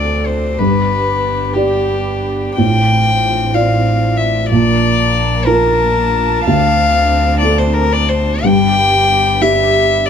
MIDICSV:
0, 0, Header, 1, 5, 480
1, 0, Start_track
1, 0, Key_signature, -1, "minor"
1, 0, Tempo, 656455
1, 432, Time_signature, 6, 3, 24, 8
1, 1877, Tempo, 642398
1, 4277, Tempo, 658617
1, 7424, End_track
2, 0, Start_track
2, 0, Title_t, "Violin"
2, 0, Program_c, 0, 40
2, 0, Note_on_c, 0, 74, 58
2, 193, Note_on_c, 0, 72, 51
2, 204, Note_off_c, 0, 74, 0
2, 434, Note_on_c, 0, 71, 67
2, 445, Note_off_c, 0, 72, 0
2, 1129, Note_on_c, 0, 67, 59
2, 1140, Note_off_c, 0, 71, 0
2, 1865, Note_off_c, 0, 67, 0
2, 1869, Note_on_c, 0, 79, 87
2, 2608, Note_on_c, 0, 77, 67
2, 2619, Note_off_c, 0, 79, 0
2, 3077, Note_on_c, 0, 76, 60
2, 3089, Note_off_c, 0, 77, 0
2, 3311, Note_off_c, 0, 76, 0
2, 3316, Note_on_c, 0, 74, 87
2, 4038, Note_on_c, 0, 70, 73
2, 4050, Note_off_c, 0, 74, 0
2, 4757, Note_off_c, 0, 70, 0
2, 4762, Note_on_c, 0, 77, 102
2, 5451, Note_off_c, 0, 77, 0
2, 5461, Note_on_c, 0, 74, 87
2, 5595, Note_on_c, 0, 72, 73
2, 5605, Note_off_c, 0, 74, 0
2, 5708, Note_on_c, 0, 70, 80
2, 5719, Note_off_c, 0, 72, 0
2, 5844, Note_on_c, 0, 74, 89
2, 5855, Note_off_c, 0, 70, 0
2, 5964, Note_on_c, 0, 72, 78
2, 5975, Note_off_c, 0, 74, 0
2, 6226, Note_on_c, 0, 79, 105
2, 6236, Note_off_c, 0, 72, 0
2, 6928, Note_on_c, 0, 76, 90
2, 6939, Note_off_c, 0, 79, 0
2, 7398, Note_on_c, 0, 74, 68
2, 7409, Note_off_c, 0, 76, 0
2, 7424, Note_off_c, 0, 74, 0
2, 7424, End_track
3, 0, Start_track
3, 0, Title_t, "Felt piano"
3, 0, Program_c, 1, 0
3, 0, Control_c, 1, 64, 127
3, 0, Note_on_c, 1, 38, 37
3, 0, Note_on_c, 1, 69, 29
3, 0, Note_on_c, 1, 74, 33
3, 402, Note_off_c, 1, 69, 0
3, 402, Note_off_c, 1, 74, 0
3, 404, Note_off_c, 1, 38, 0
3, 433, Note_on_c, 1, 43, 40
3, 445, Control_c, 1, 64, 0
3, 567, Control_c, 1, 64, 127
3, 1138, Note_on_c, 1, 67, 31
3, 1142, Note_on_c, 1, 74, 37
3, 1848, Note_off_c, 1, 67, 0
3, 1849, Note_off_c, 1, 43, 0
3, 1850, Note_off_c, 1, 74, 0
3, 1885, Note_on_c, 1, 45, 41
3, 1891, Control_c, 1, 64, 0
3, 2035, Control_c, 1, 64, 127
3, 2605, Note_on_c, 1, 65, 36
3, 2610, Note_on_c, 1, 74, 45
3, 3292, Note_off_c, 1, 65, 0
3, 3293, Note_off_c, 1, 45, 0
3, 3295, Note_off_c, 1, 74, 0
3, 3331, Note_on_c, 1, 46, 52
3, 3334, Control_c, 1, 64, 0
3, 3465, Control_c, 1, 64, 127
3, 4046, Note_on_c, 1, 65, 42
3, 4046, Note_on_c, 1, 70, 45
3, 4746, Note_off_c, 1, 46, 0
3, 4746, Note_off_c, 1, 65, 0
3, 4746, Note_off_c, 1, 70, 0
3, 4780, Note_on_c, 1, 38, 58
3, 4782, Control_c, 1, 64, 0
3, 4886, Control_c, 1, 64, 127
3, 5475, Note_on_c, 1, 62, 45
3, 5481, Note_on_c, 1, 69, 47
3, 6185, Note_off_c, 1, 62, 0
3, 6187, Note_off_c, 1, 38, 0
3, 6188, Note_off_c, 1, 69, 0
3, 6214, Note_on_c, 1, 43, 58
3, 6224, Control_c, 1, 64, 0
3, 6357, Control_c, 1, 64, 127
3, 6924, Note_on_c, 1, 62, 40
3, 6928, Note_on_c, 1, 67, 50
3, 7424, Note_off_c, 1, 43, 0
3, 7424, Note_off_c, 1, 62, 0
3, 7424, Note_off_c, 1, 67, 0
3, 7424, End_track
4, 0, Start_track
4, 0, Title_t, "String section"
4, 0, Program_c, 2, 48
4, 0, Note_on_c, 2, 60, 41
4, 0, Note_on_c, 2, 62, 37
4, 0, Note_on_c, 2, 69, 38
4, 403, Note_off_c, 2, 69, 0
4, 405, Note_off_c, 2, 60, 0
4, 431, Note_on_c, 2, 67, 42
4, 434, Note_on_c, 2, 59, 39
4, 1870, Note_on_c, 2, 60, 45
4, 1871, Note_on_c, 2, 65, 43
4, 1877, Note_off_c, 2, 67, 0
4, 1879, Note_off_c, 2, 59, 0
4, 3290, Note_off_c, 2, 62, 0
4, 3316, Note_off_c, 2, 60, 0
4, 3316, Note_off_c, 2, 65, 0
4, 3319, Note_on_c, 2, 62, 50
4, 3320, Note_on_c, 2, 58, 51
4, 3323, Note_on_c, 2, 81, 54
4, 4769, Note_off_c, 2, 58, 0
4, 4776, Note_on_c, 2, 60, 55
4, 6212, Note_off_c, 2, 81, 0
4, 6214, Note_off_c, 2, 60, 0
4, 6216, Note_on_c, 2, 59, 52
4, 6218, Note_on_c, 2, 67, 61
4, 7424, Note_off_c, 2, 59, 0
4, 7424, Note_off_c, 2, 62, 0
4, 7424, Note_off_c, 2, 67, 0
4, 7424, End_track
5, 0, Start_track
5, 0, Title_t, "Double bass"
5, 0, Program_c, 3, 43
5, 0, Note_on_c, 3, 38, 40
5, 433, Note_on_c, 3, 31, 42
5, 444, Note_off_c, 3, 38, 0
5, 1875, Note_on_c, 3, 33, 44
5, 1886, Note_off_c, 3, 31, 0
5, 3318, Note_on_c, 3, 34, 52
5, 3329, Note_off_c, 3, 33, 0
5, 4770, Note_on_c, 3, 38, 59
5, 4781, Note_off_c, 3, 34, 0
5, 6211, Note_on_c, 3, 31, 61
5, 6222, Note_off_c, 3, 38, 0
5, 7424, Note_off_c, 3, 31, 0
5, 7424, End_track
0, 0, End_of_file